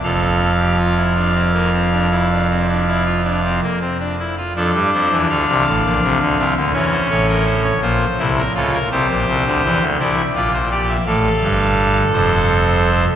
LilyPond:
<<
  \new Staff \with { instrumentName = "Pipe organ" } { \time 12/8 \key f \major \tempo 4. = 55 << { f''1~ f''4. r8 | a'8 c''8 f''2 e''16 c''16 des''16 bes'16 c''16 des''16 c''8. bes'16 a'16 bes'16 | c''4. d''16 e''16 d''16 c''16 d''16 e''16 f''4. c''4. | } \\ { a'8. g'16 f'16 e'16 d'16 c'16 bes16 c'16 d'16 e'16 d'16 c'16 d'16 e'16 f'16 d'16 c'16 bes16 c'16 d'16 e'16 f'16 | d'2. des'4. f'8 e'8 f'8 | g'4. e'8 f'8 g'8 a'2. | } >> }
  \new Staff \with { instrumentName = "Pipe organ" } { \clef bass \time 12/8 \key f \major <f,, f,>1~ <f,, f,>4. r8 | <f, f>16 <g, g>16 <f, f>16 <e, e>16 <d, d>16 <c, c>16 <a,, a,>16 <bes,, bes,>16 <c, c>16 <d, d>16 <c, c>16 <d, d>16 <e, e>8 <a,, a,>4 <bes,, bes,>8 <c, c>8 <des, des>8 | <c, c>16 <bes,, bes,>16 <c, c>16 <d, d>16 <e, e>16 <d, d>16 <c, c>8 <bes,, bes,>4 <a,, a,>8 <g,, g,>4 <f,, f,>4. | }
>>